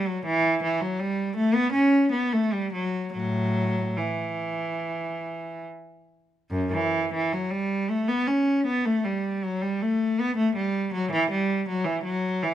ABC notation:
X:1
M:4/4
L:1/16
Q:1/4=78
K:Edor
V:1 name="Cello" clef=bass
F, E,2 E, F, G,2 A, B, C2 B, A, G, F,2 | [A,,F,]4 E,8 z4 | F,, E,2 E, F, G,2 A, B, C2 B, A, G,2 F, | G, A,2 B, A, G,2 F, E, G,2 F, E, F,2 E, |]